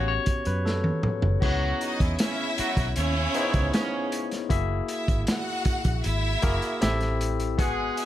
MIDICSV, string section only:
0, 0, Header, 1, 2, 480
1, 0, Start_track
1, 0, Tempo, 771208
1, 885, Time_signature, 4, 2, 24, 8
1, 5012, End_track
2, 0, Start_track
2, 0, Title_t, "String section"
2, 0, Program_c, 0, 48
2, 1123, Note_on_c, 0, 63, 92
2, 1125, Note_on_c, 0, 75, 106
2, 1316, Note_off_c, 0, 63, 0
2, 1317, Note_off_c, 0, 75, 0
2, 1360, Note_on_c, 0, 76, 127
2, 1364, Note_on_c, 0, 64, 113
2, 1818, Note_off_c, 0, 76, 0
2, 1819, Note_off_c, 0, 64, 0
2, 1842, Note_on_c, 0, 61, 127
2, 1843, Note_on_c, 0, 73, 127
2, 2538, Note_off_c, 0, 61, 0
2, 2539, Note_off_c, 0, 73, 0
2, 3045, Note_on_c, 0, 64, 89
2, 3046, Note_on_c, 0, 76, 105
2, 3237, Note_off_c, 0, 64, 0
2, 3238, Note_off_c, 0, 76, 0
2, 3284, Note_on_c, 0, 66, 120
2, 3285, Note_on_c, 0, 78, 127
2, 3739, Note_off_c, 0, 66, 0
2, 3740, Note_off_c, 0, 78, 0
2, 3760, Note_on_c, 0, 76, 127
2, 3761, Note_on_c, 0, 64, 119
2, 4458, Note_off_c, 0, 64, 0
2, 4458, Note_off_c, 0, 76, 0
2, 4969, Note_on_c, 0, 64, 98
2, 4970, Note_on_c, 0, 76, 107
2, 5012, Note_off_c, 0, 64, 0
2, 5012, Note_off_c, 0, 76, 0
2, 5012, End_track
0, 0, End_of_file